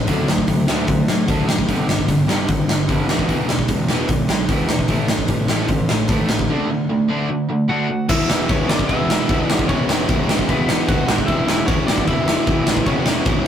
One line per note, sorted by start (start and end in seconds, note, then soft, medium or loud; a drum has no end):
0.07 0.24 D2 medium
0.07 0.26 D3 medium
0.07 0.27 F#3 medium
0.07 0.27 A3 medium
0.07 0.27 D4 medium
0.07 kick medium
0.07 open hi-hat medium
0.28 0.44 D2 medium
0.28 0.46 D3 medium
0.28 0.46 F#3 medium
0.28 0.46 A3 medium
0.28 snare loud
0.38 kick medium
0.48 0.64 D2 medium
0.48 0.66 D3 medium
0.48 0.66 F#3 medium
0.48 0.66 A3 medium
0.48 kick medium
0.48 open hi-hat medium
0.67 0.84 D2 medium
0.67 0.87 D3 medium
0.67 0.87 F#3 medium
0.67 0.87 A3 medium
0.67 0.87 D4 loud
0.67 snare loud
0.88 1.04 D2 medium
0.88 1.06 D3 medium
0.88 1.06 F#3 medium
0.88 1.06 A3 medium
0.88 kick loud
0.88 open hi-hat medium
1.08 1.24 A2 medium
1.08 1.26 D3 medium
1.08 1.26 F#3 medium
1.08 1.26 A3 medium
1.08 snare loud
1.27 1.44 D2 medium
1.27 1.46 D3 medium
1.27 1.47 F#3 medium
1.27 1.48 A3 loud
1.27 1.47 D4 medium
1.27 kick loud
1.27 open hi-hat medium
1.47 1.64 F#1 medium
1.47 1.66 D3 medium
1.47 1.66 F#3 medium
1.47 1.67 A3 medium
1.47 snare loud
1.58 kick medium
1.67 1.84 G1 medium
1.67 1.85 G2 medium
1.67 1.86 D3 medium
1.67 1.87 G3 medium
1.67 kick medium
1.67 open hi-hat medium
1.86 2.04 G1 medium
1.86 2.05 G2 medium
1.86 2.06 D3 medium
1.86 snare loud
1.99 kick medium
2.07 2.24 G1 medium
2.07 2.26 G2 medium
2.07 2.26 D3 medium
2.07 kick loud
2.07 open hi-hat medium
2.27 2.44 G1 medium
2.27 2.47 G2 medium
2.27 2.47 D3 medium
2.27 2.48 G3 medium
2.27 snare loud
2.48 2.64 G1 medium
2.48 2.66 G2 medium
2.48 2.66 D3 medium
2.48 kick loud
2.48 open hi-hat medium
2.68 2.84 G1 medium
2.68 2.86 G2 medium
2.68 2.87 D3 medium
2.68 snare loud
2.88 3.05 G1 medium
2.88 3.07 G2 medium
2.88 3.07 D3 medium
2.88 3.08 G3 medium
2.88 kick loud
2.88 open hi-hat medium
3.08 3.24 E1 medium
3.08 3.27 E2 medium
3.08 3.27 B2 medium
3.08 3.27 E3 medium
3.08 3.27 G#3 medium
3.08 3.28 B3 medium
3.08 snare loud
3.19 kick medium
3.28 3.45 E1 medium
3.28 3.47 E2 medium
3.28 3.48 B2 medium
3.28 3.47 E3 medium
3.28 3.47 G#3 medium
3.28 3.48 B3 medium
3.28 kick medium
3.28 open hi-hat medium
3.48 3.64 E1 medium
3.48 3.67 E2 medium
3.48 3.67 B2 medium
3.48 3.67 E3 medium
3.48 3.67 G#3 medium
3.48 snare loud
3.59 kick medium
3.68 3.85 E1 medium
3.68 3.86 E2 medium
3.68 3.87 B2 medium
3.68 3.87 E3 medium
3.68 3.87 G#3 medium
3.68 kick loud
3.68 open hi-hat medium
3.87 4.04 E1 medium
3.87 4.07 E2 medium
3.87 4.07 B2 medium
3.87 4.08 E3 medium
3.87 4.08 G#3 medium
3.87 4.09 B3 loud
3.87 snare medium
4.08 4.25 E1 medium
4.08 4.26 E2 medium
4.08 4.27 B2 medium
4.08 4.27 E3 medium
4.08 4.27 G#3 medium
4.08 kick loud
4.08 open hi-hat medium
4.28 4.45 B1 medium
4.28 4.46 E2 medium
4.28 4.47 B2 medium
4.28 4.47 E3 medium
4.28 4.48 G#3 medium
4.28 snare loud
4.47 4.65 E1 medium
4.47 4.66 E2 medium
4.47 4.67 B2 medium
4.47 4.68 E3 medium
4.47 4.68 G#3 medium
4.47 4.69 B3 loud
4.47 kick loud
4.47 open hi-hat medium
4.68 4.86 E2 medium
4.68 4.85 E2 medium
4.68 4.87 B2 medium
4.68 4.87 E3 medium
4.68 4.87 G#3 medium
4.68 snare loud
4.79 kick medium
4.88 5.05 A1 medium
4.88 5.07 A2 medium
4.88 5.08 E3 medium
4.88 5.08 A3 medium
4.88 kick medium
4.88 open hi-hat medium
5.08 5.25 A1 medium
5.08 5.27 A2 medium
5.08 5.27 E3 medium
5.08 snare loud
5.19 kick medium
5.28 5.45 A1 medium
5.28 5.47 A2 medium
5.28 5.47 E3 medium
5.28 kick medium
5.28 open hi-hat medium
5.48 5.65 A1 medium
5.48 5.68 A2 medium
5.48 5.68 E3 medium
5.48 5.68 A3 medium
5.48 snare loud
5.68 5.85 A1 medium
5.68 5.87 A2 medium
5.68 5.88 E3 medium
5.68 kick loud
5.68 open hi-hat medium
5.89 6.05 A1 medium
5.89 6.07 A2 medium
5.89 6.08 E3 medium
5.89 snare loud
6.08 6.25 A1 medium
6.08 6.28 A2 medium
6.08 6.28 E3 medium
6.08 6.29 A3 loud
6.08 kick loud
6.08 open hi-hat medium
6.29 6.45 A1 medium
6.29 6.47 A2 medium
6.29 6.48 E3 medium
6.29 snare loud
6.39 kick medium
6.49 6.68 D3 medium
6.49 6.69 A3 medium
6.49 6.69 D4 medium
6.70 6.88 D3 medium
6.70 6.88 A3 medium
6.90 7.07 D3 medium
6.90 7.08 A3 medium
7.09 7.28 D3 medium
7.09 7.28 A3 medium
7.09 7.29 D4 medium
7.30 7.47 D3 medium
7.30 7.47 A3 medium
7.50 7.68 D3 medium
7.50 7.68 A3 medium
7.69 7.88 D3 medium
7.69 7.88 A3 medium
7.69 7.89 D4 medium
7.69 8.07 F#4 medium
7.69 8.09 F#5 medium
7.89 8.07 D3 medium
7.89 8.07 A3 medium
8.09 8.23 E1 loud
8.09 8.29 E2 loud
8.09 8.28 B2 medium
8.09 8.29 E3 loud
8.09 8.29 G#3 medium
8.09 8.30 B3 medium
8.09 8.28 E4 medium
8.09 8.30 E4 loud
8.09 8.28 E5 medium
8.09 kick loud
8.09 crash loud
8.09 crash medium
8.29 8.44 E1 loud
8.29 8.48 E2 medium
8.29 8.48 B2 medium
8.29 8.49 E3 medium
8.29 8.50 G#3 loud
8.29 8.50 B3 loud
8.29 8.48 E4 medium
8.29 8.51 E4 medium
8.29 8.50 E5 medium
8.29 snare loud
8.48 8.77 E1 medium
8.48 8.68 E2 medium
8.48 8.68 B2 medium
8.48 8.69 E3 medium
8.48 8.69 G#3 medium
8.48 8.70 B3 loud
8.48 8.68 C#4 medium
8.48 8.70 E4 loud
8.48 8.69 C#5 medium
8.48 kick loud
8.48 crash medium
8.68 8.88 E2 loud
8.68 8.88 B2 loud
8.68 8.88 E3 medium
8.68 8.89 G#3 loud
8.68 8.89 B3 loud
8.68 8.88 D4 medium
8.68 8.90 E4 loud
8.68 8.88 D5 medium
8.68 snare loud
8.79 kick medium
8.88 9.17 E1 medium
8.88 9.08 E2 medium
8.88 9.08 B2 loud
8.88 9.07 E3 medium
8.88 9.08 G#3 medium
8.88 9.09 B3 loud
8.88 9.64 E4 medium
8.88 9.09 E4 loud
8.88 9.48 E5 loud
8.88 kick medium
8.88 crash medium
9.08 9.27 E2 loud
9.08 9.27 B2 medium
9.08 9.27 E3 loud
9.08 9.28 G#3 medium
9.08 9.29 B3 medium
9.08 9.30 E4 loud
9.08 snare loud
9.28 9.43 E1 loud
9.28 9.47 E2 medium
9.28 9.47 B2 medium
9.28 9.47 E3 medium
9.28 9.48 G#3 medium
9.28 9.49 B3 medium
9.28 9.49 E4 medium
9.28 kick loud
9.28 crash medium
9.48 9.63 A1 medium
9.48 9.67 E2 medium
9.48 9.67 B2 medium
9.48 9.68 E3 medium
9.48 9.69 G#3 medium
9.48 9.69 B3 medium
9.48 9.70 E4 loud
9.48 9.70 D5 loud
9.48 snare loud
9.59 kick medium
9.67 9.83 E1 loud
9.67 9.88 E2 medium
9.67 9.88 B2 loud
9.67 9.87 E3 medium
9.67 9.88 G#3 medium
9.67 9.89 B3 loud
9.67 10.45 C#4 medium
9.67 9.89 E4 medium
9.67 10.49 C#5 medium
9.67 kick loud
9.67 crash medium
9.88 10.03 E1 loud
9.88 10.07 E2 medium
9.88 10.07 B2 medium
9.88 10.07 E3 medium
9.88 10.08 G#3 medium
9.88 10.09 B3 medium
9.88 10.09 E4 medium
9.88 snare loud
10.07 10.36 E1 loud
10.07 10.27 E2 medium
10.07 10.27 B2 medium
10.07 10.27 E3 medium
10.07 10.28 G#3 medium
10.07 10.28 B3 medium
10.07 10.28 E4 loud
10.07 kick loud
10.07 crash medium
10.27 10.48 E2 loud
10.27 10.48 B2 loud
10.27 10.48 E3 medium
10.27 10.48 G#3 loud
10.27 10.49 B3 loud
10.27 10.50 E4 loud
10.27 snare loud
10.39 kick medium
10.48 10.76 E1 medium
10.48 10.67 E2 medium
10.48 10.67 B2 loud
10.48 10.67 E3 medium
10.48 10.68 G#3 medium
10.48 10.68 B3 medium
10.48 10.86 B3 medium
10.48 10.69 E4 loud
10.48 10.86 B4 loud
10.48 kick medium
10.48 crash medium
10.68 10.87 E2 medium
10.68 10.87 B2 loud
10.68 10.87 E3 loud
10.68 10.88 G#3 loud
10.68 10.88 B3 loud
10.68 10.89 E4 loud
10.68 snare loud
10.87 11.02 E1 loud
10.87 11.07 E2 medium
10.87 11.06 B2 medium
10.87 11.06 E3 medium
10.87 11.07 G#3 loud
10.87 11.08 B3 loud
10.87 11.08 E4 medium
10.87 11.26 F#4 medium
10.87 11.26 F#5 medium
10.87 kick loud
10.87 crash medium
11.06 11.22 A1 medium
11.06 11.26 E2 medium
11.06 11.26 B2 loud
11.06 11.27 E3 medium
11.06 11.27 G#3 medium
11.06 11.27 B3 medium
11.06 11.28 E4 medium
11.06 snare loud
11.18 kick medium
11.26 11.42 E1 medium
11.26 11.47 E2 loud
11.26 11.47 B2 loud
11.26 11.46 E3 medium
11.26 11.47 G#3 loud
11.26 11.47 B3 loud
11.26 11.46 E4 medium
11.26 11.48 E4 loud
11.26 11.45 E5 loud
11.26 kick loud
11.26 crash medium
11.46 11.62 E1 loud
11.46 11.66 E2 medium
11.46 11.66 B2 medium
11.46 11.66 E3 medium
11.46 11.67 G#3 medium
11.46 11.68 B3 medium
11.46 11.66 E4 medium
11.46 11.68 E4 medium
11.46 11.65 E5 medium
11.46 snare loud
11.66 11.96 E1 medium
11.66 11.85 E2 medium
11.66 11.86 B2 loud
11.66 11.86 E3 medium
11.66 11.86 G#3 medium
11.66 11.87 B3 medium
11.66 11.86 C#4 medium
11.66 11.87 E4 medium
11.66 11.86 C#5 medium
11.66 kick loud
11.66 crash medium
11.86 12.05 E2 loud
11.86 12.06 B2 loud
11.86 12.05 E3 medium
11.86 12.06 G#3 loud
11.86 12.06 B3 medium
11.86 12.06 D4 medium
11.86 12.07 E4 loud
11.86 12.05 D5 loud
11.86 snare loud
11.98 kick medium
12.06 12.35 E1 medium
12.06 12.25 E2 medium
12.06 12.26 B2 loud
12.06 12.25 E3 medium
12.06 12.26 G#3 medium
12.06 12.27 B3 medium
12.06 12.27 E4 loud
12.06 12.83 E4 medium
12.06 12.89 E5 loud
12.06 kick loud
12.06 crash medium
12.26 12.44 E2 medium
12.26 12.45 B2 loud
12.26 12.45 E3 medium
12.26 12.46 G#3 loud
12.26 12.47 B3 loud
12.26 12.47 E4 loud
12.26 snare loud
12.46 12.61 E1 loud
12.46 12.65 E2 medium
12.46 12.65 B2 medium
12.46 12.65 E3 medium
12.46 12.65 G#3 loud
12.46 12.66 B3 medium
12.46 12.67 E4 loud
12.46 kick loud
12.46 crash medium
12.66 12.80 A1 medium
12.66 12.85 E2 medium
12.66 12.85 B2 loud
12.66 12.85 E3 medium
12.66 12.85 G#3 medium
12.66 12.86 B3 loud
12.66 12.87 E4 loud
12.66 snare loud
12.77 kick medium
12.86 13.00 E1 loud
12.86 13.04 E2 medium
12.86 13.05 B2 loud
12.86 13.05 E3 medium
12.86 13.05 G#3 loud
12.86 13.06 B3 loud
12.86 13.47 C#4 medium
12.86 13.06 E4 loud
12.86 13.47 C#5 loud
12.86 kick medium
12.86 crash medium
13.06 13.20 E1 loud
13.06 13.24 E2 medium
13.06 13.25 B2 loud
13.06 13.24 E3 medium
13.06 13.25 G#3 medium
13.06 13.26 B3 medium
13.06 13.26 E4 loud
13.06 snare loud
13.25 13.47 E1 loud
13.25 13.44 E2 medium
13.25 13.45 B2 medium
13.25 13.44 E3 medium
13.25 13.45 G#3 medium
13.25 13.46 B3 medium
13.25 13.46 E4 medium
13.25 kick loud
13.25 crash medium